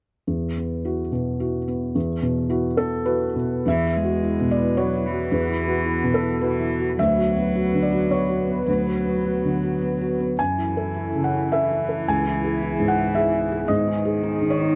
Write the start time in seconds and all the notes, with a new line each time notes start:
0.27 E2
0.57 B3
0.85 E4 F#4
1.12 B2
1.40 E4 F#4
1.68 B3
1.95 E2
2.22 B2
2.50 E4 F#4
2.77 B3 A4
3.06 E4 F#4 B4
3.36 B2
3.66 E2 E3 B3 F#4 B4 E5
3.85 E4
3.96 G#3
4.04 F#4
4.23 E4
4.41 B2
4.51 D5
4.59 E4
4.77 F#3 F#4 C#5
4.95 E4
5.06 E3
5.13 F#4
5.32 E2 B4
5.50 E4
5.68 F#4
5.86 E4
6.04 B2
6.14 A4
6.23 E4
6.41 E3 F#4 B4
6.61 E4
6.80 F#4
6.98 D2 F#3 B3 F#4 B4 E5
7.18 F#4
7.37 B3
7.55 F#4
7.74 D3
7.83 D5
7.92 F#4
8.10 B3 C#5
8.29 F#4
8.48 B3
8.66 D2 F#3 B4
8.86 F#4
9.05 B3
9.25 F#4
9.44 D3
9.63 F#4
9.82 B3
10.01 F#4
10.20 B3
10.39 F#2 E3 C#4 E4 A4 G#5
10.58 E4
10.77 A4
10.97 E4
11.15 C#3
11.24 F#5
11.34 E4
11.52 A4 E5
11.71 E4
11.89 A4
12.07 C#2 B3 G#4 G#5
12.26 E4
12.44 G#4
12.62 E4
12.80 G#2
12.88 F#5
12.98 E4
13.15 G#4 E5
13.34 E4
13.52 G#4
13.68 G#2 D#3 D#4 D#5
13.88 D#4
14.05 G#4
14.23 D#4
14.42 D#3
14.50 C#5
14.61 D#4